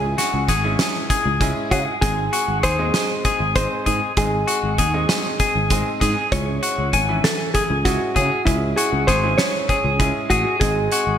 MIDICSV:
0, 0, Header, 1, 6, 480
1, 0, Start_track
1, 0, Key_signature, 4, "minor"
1, 0, Tempo, 613497
1, 1584, Time_signature, 7, 3, 24, 8
1, 8748, End_track
2, 0, Start_track
2, 0, Title_t, "Clean electric guitar"
2, 0, Program_c, 0, 27
2, 142, Note_on_c, 0, 66, 67
2, 338, Note_off_c, 0, 66, 0
2, 383, Note_on_c, 0, 68, 67
2, 775, Note_off_c, 0, 68, 0
2, 861, Note_on_c, 0, 68, 67
2, 1254, Note_off_c, 0, 68, 0
2, 1343, Note_on_c, 0, 68, 69
2, 1539, Note_off_c, 0, 68, 0
2, 1821, Note_on_c, 0, 66, 65
2, 2018, Note_off_c, 0, 66, 0
2, 2059, Note_on_c, 0, 68, 64
2, 2453, Note_off_c, 0, 68, 0
2, 2542, Note_on_c, 0, 68, 65
2, 2935, Note_off_c, 0, 68, 0
2, 3021, Note_on_c, 0, 68, 70
2, 3218, Note_off_c, 0, 68, 0
2, 3501, Note_on_c, 0, 66, 70
2, 3698, Note_off_c, 0, 66, 0
2, 3746, Note_on_c, 0, 68, 62
2, 4137, Note_off_c, 0, 68, 0
2, 4224, Note_on_c, 0, 68, 61
2, 4616, Note_off_c, 0, 68, 0
2, 4704, Note_on_c, 0, 68, 61
2, 4900, Note_off_c, 0, 68, 0
2, 5185, Note_on_c, 0, 66, 70
2, 5380, Note_off_c, 0, 66, 0
2, 5426, Note_on_c, 0, 80, 62
2, 5817, Note_off_c, 0, 80, 0
2, 5908, Note_on_c, 0, 68, 61
2, 6298, Note_off_c, 0, 68, 0
2, 6384, Note_on_c, 0, 68, 69
2, 6580, Note_off_c, 0, 68, 0
2, 6865, Note_on_c, 0, 66, 67
2, 7060, Note_off_c, 0, 66, 0
2, 7106, Note_on_c, 0, 68, 67
2, 7496, Note_off_c, 0, 68, 0
2, 7585, Note_on_c, 0, 68, 67
2, 7975, Note_off_c, 0, 68, 0
2, 8064, Note_on_c, 0, 68, 73
2, 8259, Note_off_c, 0, 68, 0
2, 8546, Note_on_c, 0, 66, 69
2, 8740, Note_off_c, 0, 66, 0
2, 8748, End_track
3, 0, Start_track
3, 0, Title_t, "Hollow-body jazz guitar"
3, 0, Program_c, 1, 26
3, 0, Note_on_c, 1, 68, 69
3, 829, Note_off_c, 1, 68, 0
3, 1340, Note_on_c, 1, 66, 80
3, 1406, Note_off_c, 1, 66, 0
3, 1576, Note_on_c, 1, 68, 76
3, 2029, Note_off_c, 1, 68, 0
3, 2061, Note_on_c, 1, 72, 90
3, 2773, Note_off_c, 1, 72, 0
3, 2782, Note_on_c, 1, 72, 86
3, 3264, Note_off_c, 1, 72, 0
3, 3267, Note_on_c, 1, 68, 63
3, 4675, Note_off_c, 1, 68, 0
3, 4945, Note_on_c, 1, 73, 80
3, 5665, Note_on_c, 1, 69, 78
3, 5686, Note_off_c, 1, 73, 0
3, 5895, Note_off_c, 1, 69, 0
3, 5899, Note_on_c, 1, 68, 83
3, 5964, Note_off_c, 1, 68, 0
3, 6142, Note_on_c, 1, 66, 77
3, 6615, Note_on_c, 1, 64, 77
3, 6637, Note_off_c, 1, 66, 0
3, 6857, Note_on_c, 1, 68, 74
3, 6866, Note_off_c, 1, 64, 0
3, 7099, Note_on_c, 1, 72, 82
3, 7107, Note_off_c, 1, 68, 0
3, 7332, Note_off_c, 1, 72, 0
3, 7336, Note_on_c, 1, 73, 88
3, 8057, Note_on_c, 1, 66, 77
3, 8080, Note_off_c, 1, 73, 0
3, 8289, Note_off_c, 1, 66, 0
3, 8292, Note_on_c, 1, 68, 71
3, 8748, Note_off_c, 1, 68, 0
3, 8748, End_track
4, 0, Start_track
4, 0, Title_t, "Grand piano"
4, 0, Program_c, 2, 0
4, 0, Note_on_c, 2, 56, 67
4, 0, Note_on_c, 2, 61, 59
4, 0, Note_on_c, 2, 64, 58
4, 0, Note_on_c, 2, 68, 79
4, 374, Note_off_c, 2, 61, 0
4, 375, Note_off_c, 2, 56, 0
4, 375, Note_off_c, 2, 64, 0
4, 375, Note_off_c, 2, 68, 0
4, 501, Note_on_c, 2, 61, 64
4, 502, Note_on_c, 2, 56, 68
4, 502, Note_on_c, 2, 64, 62
4, 502, Note_on_c, 2, 68, 78
4, 976, Note_off_c, 2, 56, 0
4, 976, Note_off_c, 2, 61, 0
4, 976, Note_off_c, 2, 68, 0
4, 977, Note_off_c, 2, 64, 0
4, 1098, Note_on_c, 2, 61, 76
4, 1100, Note_on_c, 2, 56, 85
4, 1100, Note_on_c, 2, 64, 76
4, 1100, Note_on_c, 2, 68, 97
4, 1480, Note_off_c, 2, 61, 0
4, 1481, Note_off_c, 2, 56, 0
4, 1481, Note_off_c, 2, 64, 0
4, 1481, Note_off_c, 2, 68, 0
4, 1577, Note_on_c, 2, 56, 61
4, 1579, Note_on_c, 2, 60, 53
4, 1580, Note_on_c, 2, 68, 69
4, 1582, Note_on_c, 2, 63, 57
4, 2054, Note_off_c, 2, 56, 0
4, 2055, Note_off_c, 2, 60, 0
4, 2056, Note_off_c, 2, 63, 0
4, 2056, Note_off_c, 2, 68, 0
4, 2179, Note_on_c, 2, 56, 75
4, 2180, Note_on_c, 2, 68, 80
4, 2181, Note_on_c, 2, 60, 65
4, 2181, Note_on_c, 2, 63, 65
4, 2655, Note_off_c, 2, 56, 0
4, 2656, Note_off_c, 2, 60, 0
4, 2656, Note_off_c, 2, 63, 0
4, 2656, Note_off_c, 2, 68, 0
4, 2785, Note_on_c, 2, 56, 71
4, 2785, Note_on_c, 2, 63, 59
4, 2786, Note_on_c, 2, 60, 62
4, 2788, Note_on_c, 2, 68, 71
4, 3164, Note_off_c, 2, 56, 0
4, 3164, Note_off_c, 2, 60, 0
4, 3164, Note_off_c, 2, 63, 0
4, 3165, Note_off_c, 2, 68, 0
4, 3264, Note_on_c, 2, 56, 66
4, 3266, Note_on_c, 2, 60, 58
4, 3267, Note_on_c, 2, 63, 60
4, 3267, Note_on_c, 2, 68, 74
4, 3738, Note_off_c, 2, 56, 0
4, 3739, Note_off_c, 2, 60, 0
4, 3739, Note_off_c, 2, 63, 0
4, 3740, Note_off_c, 2, 68, 0
4, 3864, Note_on_c, 2, 56, 70
4, 3865, Note_on_c, 2, 60, 62
4, 3867, Note_on_c, 2, 63, 65
4, 3867, Note_on_c, 2, 68, 75
4, 4338, Note_off_c, 2, 56, 0
4, 4338, Note_off_c, 2, 60, 0
4, 4339, Note_off_c, 2, 63, 0
4, 4339, Note_off_c, 2, 68, 0
4, 4467, Note_on_c, 2, 56, 86
4, 4469, Note_on_c, 2, 60, 77
4, 4472, Note_on_c, 2, 63, 77
4, 4473, Note_on_c, 2, 68, 88
4, 4845, Note_off_c, 2, 56, 0
4, 4846, Note_off_c, 2, 60, 0
4, 4847, Note_off_c, 2, 63, 0
4, 4848, Note_off_c, 2, 68, 0
4, 4948, Note_on_c, 2, 56, 57
4, 4950, Note_on_c, 2, 61, 59
4, 4950, Note_on_c, 2, 64, 56
4, 4951, Note_on_c, 2, 68, 64
4, 5420, Note_off_c, 2, 56, 0
4, 5421, Note_off_c, 2, 61, 0
4, 5421, Note_off_c, 2, 64, 0
4, 5421, Note_off_c, 2, 68, 0
4, 5545, Note_on_c, 2, 52, 69
4, 5548, Note_on_c, 2, 61, 57
4, 5548, Note_on_c, 2, 64, 60
4, 6018, Note_off_c, 2, 52, 0
4, 6020, Note_off_c, 2, 61, 0
4, 6020, Note_off_c, 2, 64, 0
4, 6145, Note_on_c, 2, 56, 61
4, 6146, Note_on_c, 2, 61, 60
4, 6146, Note_on_c, 2, 64, 61
4, 6148, Note_on_c, 2, 68, 67
4, 6523, Note_off_c, 2, 56, 0
4, 6524, Note_off_c, 2, 61, 0
4, 6524, Note_off_c, 2, 64, 0
4, 6525, Note_off_c, 2, 68, 0
4, 6628, Note_on_c, 2, 56, 63
4, 6629, Note_on_c, 2, 61, 67
4, 6629, Note_on_c, 2, 64, 58
4, 6630, Note_on_c, 2, 68, 77
4, 7099, Note_off_c, 2, 56, 0
4, 7099, Note_off_c, 2, 61, 0
4, 7099, Note_off_c, 2, 64, 0
4, 7100, Note_off_c, 2, 68, 0
4, 7223, Note_on_c, 2, 61, 56
4, 7224, Note_on_c, 2, 56, 57
4, 7224, Note_on_c, 2, 68, 66
4, 7225, Note_on_c, 2, 64, 54
4, 7696, Note_off_c, 2, 61, 0
4, 7697, Note_off_c, 2, 56, 0
4, 7697, Note_off_c, 2, 64, 0
4, 7697, Note_off_c, 2, 68, 0
4, 7819, Note_on_c, 2, 56, 67
4, 7819, Note_on_c, 2, 61, 66
4, 7821, Note_on_c, 2, 64, 66
4, 7821, Note_on_c, 2, 68, 81
4, 8199, Note_off_c, 2, 56, 0
4, 8199, Note_off_c, 2, 61, 0
4, 8200, Note_off_c, 2, 64, 0
4, 8200, Note_off_c, 2, 68, 0
4, 8302, Note_on_c, 2, 63, 60
4, 8303, Note_on_c, 2, 56, 67
4, 8303, Note_on_c, 2, 60, 59
4, 8304, Note_on_c, 2, 68, 73
4, 8748, Note_off_c, 2, 56, 0
4, 8748, Note_off_c, 2, 60, 0
4, 8748, Note_off_c, 2, 63, 0
4, 8748, Note_off_c, 2, 68, 0
4, 8748, End_track
5, 0, Start_track
5, 0, Title_t, "Fretless electric bass"
5, 0, Program_c, 3, 35
5, 0, Note_on_c, 3, 37, 75
5, 105, Note_off_c, 3, 37, 0
5, 261, Note_on_c, 3, 37, 69
5, 364, Note_off_c, 3, 37, 0
5, 380, Note_on_c, 3, 32, 73
5, 585, Note_off_c, 3, 32, 0
5, 980, Note_on_c, 3, 37, 79
5, 1185, Note_off_c, 3, 37, 0
5, 1339, Note_on_c, 3, 49, 85
5, 1443, Note_off_c, 3, 49, 0
5, 1579, Note_on_c, 3, 32, 74
5, 1784, Note_off_c, 3, 32, 0
5, 1939, Note_on_c, 3, 32, 68
5, 2043, Note_off_c, 3, 32, 0
5, 2062, Note_on_c, 3, 39, 78
5, 2266, Note_off_c, 3, 39, 0
5, 2660, Note_on_c, 3, 32, 78
5, 2865, Note_off_c, 3, 32, 0
5, 3024, Note_on_c, 3, 44, 83
5, 3126, Note_off_c, 3, 44, 0
5, 3263, Note_on_c, 3, 32, 77
5, 3467, Note_off_c, 3, 32, 0
5, 3623, Note_on_c, 3, 32, 69
5, 3725, Note_off_c, 3, 32, 0
5, 3742, Note_on_c, 3, 39, 79
5, 3947, Note_off_c, 3, 39, 0
5, 4343, Note_on_c, 3, 32, 76
5, 4547, Note_off_c, 3, 32, 0
5, 4704, Note_on_c, 3, 44, 79
5, 4806, Note_off_c, 3, 44, 0
5, 4945, Note_on_c, 3, 37, 73
5, 5148, Note_off_c, 3, 37, 0
5, 5304, Note_on_c, 3, 37, 69
5, 5406, Note_off_c, 3, 37, 0
5, 5426, Note_on_c, 3, 32, 71
5, 5629, Note_off_c, 3, 32, 0
5, 6025, Note_on_c, 3, 37, 78
5, 6228, Note_off_c, 3, 37, 0
5, 6383, Note_on_c, 3, 49, 86
5, 6485, Note_off_c, 3, 49, 0
5, 6624, Note_on_c, 3, 37, 74
5, 6827, Note_off_c, 3, 37, 0
5, 6981, Note_on_c, 3, 37, 67
5, 7084, Note_off_c, 3, 37, 0
5, 7104, Note_on_c, 3, 32, 76
5, 7307, Note_off_c, 3, 32, 0
5, 7700, Note_on_c, 3, 37, 85
5, 7905, Note_off_c, 3, 37, 0
5, 8062, Note_on_c, 3, 33, 83
5, 8164, Note_off_c, 3, 33, 0
5, 8299, Note_on_c, 3, 32, 80
5, 8504, Note_off_c, 3, 32, 0
5, 8657, Note_on_c, 3, 32, 78
5, 8748, Note_off_c, 3, 32, 0
5, 8748, End_track
6, 0, Start_track
6, 0, Title_t, "Drums"
6, 143, Note_on_c, 9, 38, 30
6, 143, Note_on_c, 9, 42, 54
6, 221, Note_off_c, 9, 38, 0
6, 221, Note_off_c, 9, 42, 0
6, 379, Note_on_c, 9, 36, 66
6, 379, Note_on_c, 9, 38, 31
6, 379, Note_on_c, 9, 42, 61
6, 458, Note_off_c, 9, 36, 0
6, 458, Note_off_c, 9, 38, 0
6, 458, Note_off_c, 9, 42, 0
6, 618, Note_on_c, 9, 38, 87
6, 618, Note_on_c, 9, 42, 70
6, 696, Note_off_c, 9, 38, 0
6, 696, Note_off_c, 9, 42, 0
6, 861, Note_on_c, 9, 36, 71
6, 862, Note_on_c, 9, 42, 62
6, 939, Note_off_c, 9, 36, 0
6, 940, Note_off_c, 9, 42, 0
6, 1101, Note_on_c, 9, 36, 84
6, 1102, Note_on_c, 9, 42, 63
6, 1179, Note_off_c, 9, 36, 0
6, 1180, Note_off_c, 9, 42, 0
6, 1341, Note_on_c, 9, 36, 63
6, 1342, Note_on_c, 9, 42, 54
6, 1419, Note_off_c, 9, 36, 0
6, 1420, Note_off_c, 9, 42, 0
6, 1582, Note_on_c, 9, 36, 95
6, 1582, Note_on_c, 9, 42, 67
6, 1660, Note_off_c, 9, 36, 0
6, 1660, Note_off_c, 9, 42, 0
6, 1823, Note_on_c, 9, 42, 50
6, 1901, Note_off_c, 9, 42, 0
6, 2060, Note_on_c, 9, 42, 58
6, 2062, Note_on_c, 9, 36, 61
6, 2138, Note_off_c, 9, 42, 0
6, 2140, Note_off_c, 9, 36, 0
6, 2299, Note_on_c, 9, 38, 80
6, 2299, Note_on_c, 9, 42, 64
6, 2378, Note_off_c, 9, 38, 0
6, 2378, Note_off_c, 9, 42, 0
6, 2541, Note_on_c, 9, 42, 56
6, 2542, Note_on_c, 9, 36, 69
6, 2619, Note_off_c, 9, 42, 0
6, 2621, Note_off_c, 9, 36, 0
6, 2782, Note_on_c, 9, 42, 68
6, 2783, Note_on_c, 9, 36, 84
6, 2860, Note_off_c, 9, 42, 0
6, 2861, Note_off_c, 9, 36, 0
6, 3023, Note_on_c, 9, 42, 53
6, 3024, Note_on_c, 9, 36, 57
6, 3101, Note_off_c, 9, 42, 0
6, 3102, Note_off_c, 9, 36, 0
6, 3262, Note_on_c, 9, 42, 71
6, 3264, Note_on_c, 9, 36, 92
6, 3340, Note_off_c, 9, 42, 0
6, 3342, Note_off_c, 9, 36, 0
6, 3503, Note_on_c, 9, 42, 53
6, 3581, Note_off_c, 9, 42, 0
6, 3743, Note_on_c, 9, 42, 59
6, 3744, Note_on_c, 9, 36, 68
6, 3821, Note_off_c, 9, 42, 0
6, 3822, Note_off_c, 9, 36, 0
6, 3982, Note_on_c, 9, 38, 88
6, 3982, Note_on_c, 9, 42, 65
6, 4060, Note_off_c, 9, 38, 0
6, 4060, Note_off_c, 9, 42, 0
6, 4222, Note_on_c, 9, 42, 58
6, 4224, Note_on_c, 9, 36, 72
6, 4300, Note_off_c, 9, 42, 0
6, 4302, Note_off_c, 9, 36, 0
6, 4462, Note_on_c, 9, 42, 65
6, 4464, Note_on_c, 9, 36, 87
6, 4540, Note_off_c, 9, 42, 0
6, 4542, Note_off_c, 9, 36, 0
6, 4705, Note_on_c, 9, 36, 58
6, 4705, Note_on_c, 9, 38, 27
6, 4705, Note_on_c, 9, 42, 51
6, 4783, Note_off_c, 9, 36, 0
6, 4783, Note_off_c, 9, 38, 0
6, 4783, Note_off_c, 9, 42, 0
6, 4945, Note_on_c, 9, 36, 93
6, 4945, Note_on_c, 9, 42, 73
6, 5023, Note_off_c, 9, 36, 0
6, 5023, Note_off_c, 9, 42, 0
6, 5185, Note_on_c, 9, 42, 55
6, 5264, Note_off_c, 9, 42, 0
6, 5423, Note_on_c, 9, 42, 61
6, 5424, Note_on_c, 9, 36, 64
6, 5502, Note_off_c, 9, 42, 0
6, 5503, Note_off_c, 9, 36, 0
6, 5666, Note_on_c, 9, 38, 86
6, 5666, Note_on_c, 9, 42, 62
6, 5744, Note_off_c, 9, 38, 0
6, 5744, Note_off_c, 9, 42, 0
6, 5903, Note_on_c, 9, 42, 55
6, 5905, Note_on_c, 9, 36, 68
6, 5981, Note_off_c, 9, 42, 0
6, 5983, Note_off_c, 9, 36, 0
6, 6144, Note_on_c, 9, 36, 82
6, 6144, Note_on_c, 9, 38, 28
6, 6144, Note_on_c, 9, 42, 65
6, 6222, Note_off_c, 9, 38, 0
6, 6222, Note_off_c, 9, 42, 0
6, 6223, Note_off_c, 9, 36, 0
6, 6384, Note_on_c, 9, 36, 58
6, 6384, Note_on_c, 9, 42, 50
6, 6462, Note_off_c, 9, 36, 0
6, 6462, Note_off_c, 9, 42, 0
6, 6624, Note_on_c, 9, 36, 92
6, 6625, Note_on_c, 9, 42, 63
6, 6703, Note_off_c, 9, 36, 0
6, 6704, Note_off_c, 9, 42, 0
6, 6865, Note_on_c, 9, 42, 54
6, 6944, Note_off_c, 9, 42, 0
6, 7104, Note_on_c, 9, 36, 68
6, 7105, Note_on_c, 9, 38, 34
6, 7105, Note_on_c, 9, 42, 54
6, 7182, Note_off_c, 9, 36, 0
6, 7183, Note_off_c, 9, 38, 0
6, 7183, Note_off_c, 9, 42, 0
6, 7343, Note_on_c, 9, 38, 88
6, 7343, Note_on_c, 9, 42, 63
6, 7421, Note_off_c, 9, 38, 0
6, 7421, Note_off_c, 9, 42, 0
6, 7583, Note_on_c, 9, 36, 71
6, 7584, Note_on_c, 9, 42, 50
6, 7661, Note_off_c, 9, 36, 0
6, 7662, Note_off_c, 9, 42, 0
6, 7822, Note_on_c, 9, 36, 89
6, 7822, Note_on_c, 9, 42, 66
6, 7900, Note_off_c, 9, 36, 0
6, 7900, Note_off_c, 9, 42, 0
6, 8062, Note_on_c, 9, 36, 61
6, 8062, Note_on_c, 9, 42, 51
6, 8140, Note_off_c, 9, 36, 0
6, 8140, Note_off_c, 9, 42, 0
6, 8301, Note_on_c, 9, 36, 91
6, 8301, Note_on_c, 9, 42, 72
6, 8379, Note_off_c, 9, 42, 0
6, 8380, Note_off_c, 9, 36, 0
6, 8540, Note_on_c, 9, 42, 55
6, 8618, Note_off_c, 9, 42, 0
6, 8748, End_track
0, 0, End_of_file